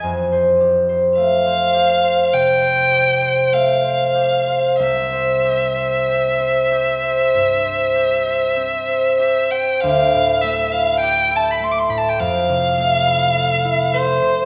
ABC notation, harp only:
X:1
M:4/4
L:1/16
Q:1/4=50
K:F
V:1 name="Harp"
F,, c G c A, c G c C, c G c A, c G c | C,, c G c C c G c G,, c G c C c G c | D,, A,, A, E G E A, A,, F,, C, A, E A E A, C, |]